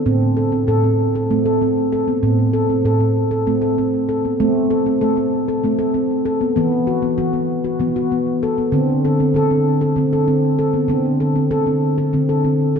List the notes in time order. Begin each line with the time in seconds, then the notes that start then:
0.06 A2 C4
0.37 A4
0.52 C4
0.67 A2 A4
0.84 C4
1.15 A4
1.30 A3 C4
1.46 A4
1.62 C4
1.92 A4
2.08 B3
2.23 A2 C4
2.53 A4
2.70 C4
2.85 A2 A4
3.00 C4
3.31 A4
3.47 A3 C4
3.62 A4
3.78 C4
4.09 A4
4.25 B3
4.40 A3 C4
4.70 A4
4.86 C4
5.01 A3 A4
5.17 C4
5.48 A4
5.64 A3 C4
5.79 A4
5.94 C4
6.26 A4
6.41 B3
6.56 E3 B3
6.87 F#4
7.02 B3
7.18 E3 F#4
7.33 B3
7.64 F#4
7.79 E3 B3
7.96 F#4
8.12 B3
8.43 A4
8.58 B3
8.72 D3 C4
9.05 A4
9.20 C4
9.34 D3 A4
9.51 C4
9.81 A4
9.96 D3 C4
10.13 A4
10.28 C4
10.59 A4
10.74 B3
10.88 D3 C4
11.20 A4
11.36 C4
11.51 D3 A4
11.66 C4
11.98 A4
12.13 D3 C4
12.29 A4
12.44 C4
12.76 A4